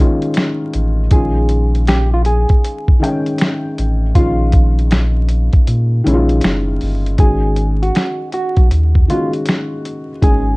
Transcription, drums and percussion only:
0.22 closed hi-hat
0.34 finger snap, snare, closed hi-hat
0.73 closed hi-hat
1.11 kick, closed hi-hat
1.49 closed hi-hat
1.75 closed hi-hat
1.87 finger snap, snare, closed hi-hat
2.25 closed hi-hat
2.49 kick, closed hi-hat
2.64 closed hi-hat
2.88 kick
3.04 closed hi-hat
3.26 closed hi-hat
3.38 finger snap, snare, closed hi-hat
3.78 closed hi-hat
4.15 kick, closed hi-hat
4.52 kick, closed hi-hat
4.79 closed hi-hat
4.91 finger snap, snare, closed hi-hat
5.29 closed hi-hat
5.53 kick, closed hi-hat
5.67 closed hi-hat
6.07 closed hi-hat
6.29 closed hi-hat
6.41 finger snap, snare, closed hi-hat
6.81 open hi-hat
7.06 closed hi-hat
7.18 kick, closed hi-hat
7.56 closed hi-hat
7.83 closed hi-hat
7.95 finger snap, snare, closed hi-hat
8.32 closed hi-hat
8.57 kick, closed hi-hat
8.71 closed hi-hat
8.95 kick
9.10 closed hi-hat
9.33 closed hi-hat
9.46 finger snap, snare, closed hi-hat
9.85 closed hi-hat
10.22 kick, closed hi-hat

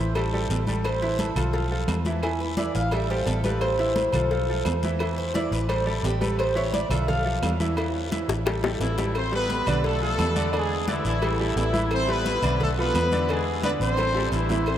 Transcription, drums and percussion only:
0.15 cowbell, high conga, low agogo, long guiro, claves
0.32 high conga
0.50 cowbell, high conga, low timbale, low agogo, short guiro
0.67 high conga, low agogo, short guiro
0.84 cowbell, high conga, low agogo, long guiro, claves
1.01 cowbell, high conga
1.19 cowbell, high conga, low timbale, low agogo, short guiro
1.36 cowbell, high conga, low conga, low agogo, short guiro, claves
1.53 cowbell, high conga, long guiro
1.70 high conga
1.88 cowbell, high conga, low timbale, low agogo, short guiro, claves
2.05 cowbell, high conga, short guiro
2.23 cowbell, low agogo, long guiro, claves
2.40 high conga
2.57 cowbell, high conga, low timbale, low agogo, short guiro
2.75 cowbell, high conga, short guiro
2.91 cowbell, high conga, low agogo, long guiro, claves
3.10 high conga
3.26 cowbell, high conga, low timbale, low agogo, short guiro
3.44 high conga, low agogo, short guiro
3.61 cowbell, high conga, low agogo, long guiro, claves
3.79 cowbell, high conga
3.96 cowbell, high conga, low timbale, low agogo, short guiro
4.13 cowbell, high conga, low conga, low agogo, short guiro, claves
4.31 cowbell, long guiro
4.48 high conga
4.65 cowbell, high conga, low timbale, low agogo, short guiro, claves
4.83 cowbell, high conga, short guiro
4.99 cowbell, high conga, low agogo, long guiro, claves
5.18 high conga
5.34 cowbell, high conga, low timbale, low agogo, short guiro
5.52 cowbell, short guiro
5.69 cowbell, high conga, low agogo, long guiro, claves
5.87 high conga
6.04 cowbell, high conga, low timbale, low agogo, short guiro
6.21 high conga, low agogo, short guiro
6.39 cowbell, high conga, low agogo, long guiro, claves
6.56 cowbell, high conga
6.73 cowbell, high conga, low timbale, low agogo, short guiro
6.90 cowbell, high conga, low conga, low agogo, short guiro, claves
7.08 cowbell, high conga, low conga, long guiro
7.26 high conga
7.43 cowbell, high conga, low timbale, low agogo, short guiro, claves
7.60 cowbell, high conga, short guiro
7.77 cowbell, high conga, low agogo, long guiro, claves
7.96 high conga
8.11 cowbell, high conga, low timbale, low agogo, short guiro
8.29 cowbell, high bongo, high conga, short guiro
8.46 cowbell, high bongo, high conga, low agogo, long guiro, claves
8.64 high bongo, high conga
8.81 cowbell, low bongo, high conga, low timbale, low agogo, short guiro
8.98 low bongo, high conga, low agogo, short guiro
9.15 cowbell, high conga, low agogo, long guiro, claves
9.33 cowbell, high conga
9.49 cowbell, high conga, low timbale, low agogo, short guiro
9.66 cowbell, high conga, low conga, low agogo, short guiro, claves
9.84 cowbell, high conga, long guiro
10.02 high conga
10.19 cowbell, high conga, low timbale, low agogo, short guiro, claves
10.36 cowbell, high conga, short guiro
10.53 cowbell, high conga, low agogo, long guiro, claves
10.71 high conga
10.88 cowbell, high conga, low timbale, low agogo, short guiro
11.05 cowbell, short guiro
11.22 cowbell, high conga, low agogo, long guiro, claves
11.40 high conga
11.57 cowbell, high conga, low timbale, low agogo, short guiro
11.74 high conga, low agogo, short guiro
11.91 cowbell, high conga, low agogo, long guiro, claves
12.09 cowbell, high conga
12.26 cowbell, high conga, low timbale, low agogo, short guiro
12.43 cowbell, high conga, low conga, low agogo, short guiro, claves
12.60 cowbell, high conga, low conga, long guiro
12.78 high conga
12.95 cowbell, high conga, low timbale, low agogo, short guiro, claves
13.12 cowbell, high conga, short guiro
13.29 cowbell, high conga, low agogo, long guiro, claves
13.47 high conga
13.63 cowbell, high conga, low timbale, low agogo, short guiro
13.81 cowbell, high conga, short guiro
13.97 cowbell, high conga, high timbale, low agogo, long guiro, claves
14.15 high conga, high timbale
14.32 cowbell, high conga, low timbale, low agogo, short guiro
14.49 high conga, low timbale, low agogo, short guiro
14.66 cowbell, high conga, low agogo, long guiro, claves

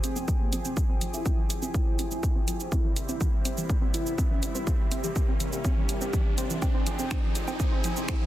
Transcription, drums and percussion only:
0.04 closed hi-hat, shaker
0.16 shaker
0.28 kick, shaker
0.53 closed hi-hat, shaker
0.65 shaker
0.77 kick, shaker
1.01 closed hi-hat, shaker
1.14 shaker
1.26 kick, shaker
1.50 closed hi-hat, shaker
1.63 shaker
1.74 kick, shaker
1.99 closed hi-hat, shaker
2.11 shaker
2.23 kick, shaker
2.48 closed hi-hat, shaker
2.60 shaker
2.72 kick, shaker
2.96 closed hi-hat, shaker
3.09 shaker
3.21 kick, shaker
3.45 closed hi-hat, shaker
3.58 shaker
3.70 kick, shaker
3.94 closed hi-hat, shaker
4.06 shaker
4.18 kick, shaker
4.43 closed hi-hat, shaker
4.55 shaker
4.67 kick, shaker
4.92 closed hi-hat, shaker
5.04 shaker
5.16 kick, shaker
5.40 closed hi-hat, shaker
5.53 shaker
5.65 kick, shaker
5.89 closed hi-hat, shaker
6.01 shaker
6.13 kick, shaker
6.38 closed hi-hat, shaker
6.50 shaker
6.62 kick, low woodblock, shaker
6.87 closed hi-hat, shaker
6.99 shaker
7.11 finger snap, kick, shaker
7.35 closed hi-hat, shaker
7.48 low woodblock, shaker
7.60 kick, shaker
7.84 closed hi-hat, shaker
7.97 shaker
8.08 finger snap, kick, shaker

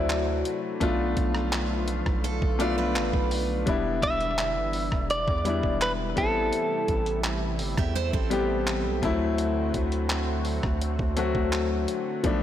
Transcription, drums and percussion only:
0.09 clap, closed hi-hat
0.45 closed hi-hat
0.81 kick, closed hi-hat
1.17 kick, closed hi-hat
1.35 cross-stick
1.52 clap, closed hi-hat
1.88 closed hi-hat
2.06 kick, cross-stick
2.24 closed hi-hat
2.42 kick
2.60 closed hi-hat
2.95 clap, closed hi-hat
3.13 kick
3.31 open hi-hat
3.67 kick, closed hi-hat
4.03 kick, closed hi-hat
4.21 closed hi-hat
4.38 clap, closed hi-hat
4.73 open hi-hat
4.92 kick, cross-stick
5.10 closed hi-hat
5.28 kick
5.45 closed hi-hat
5.63 kick
5.81 clap, closed hi-hat
6.17 kick, closed hi-hat
6.53 closed hi-hat
6.88 kick, closed hi-hat
7.06 closed hi-hat
7.24 clap, closed hi-hat
7.59 open hi-hat
7.78 kick, cross-stick
7.96 closed hi-hat
8.13 kick
8.31 closed hi-hat
8.67 clap, closed hi-hat
9.03 kick, closed hi-hat
9.38 closed hi-hat
9.74 kick, closed hi-hat
9.92 closed hi-hat
10.10 clap, closed hi-hat
10.45 open hi-hat
10.63 kick, cross-stick
10.81 closed hi-hat
10.99 kick
11.17 closed hi-hat
11.35 kick
11.52 clap, closed hi-hat
11.88 closed hi-hat
12.24 kick, closed hi-hat

